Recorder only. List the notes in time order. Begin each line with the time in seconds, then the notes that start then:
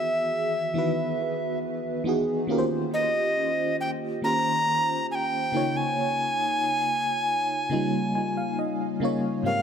Already playing: E5
2.94 D#5
3.81 G5
4.24 A#5
5.11 G5 G#5
5.77 G#5
9.46 F5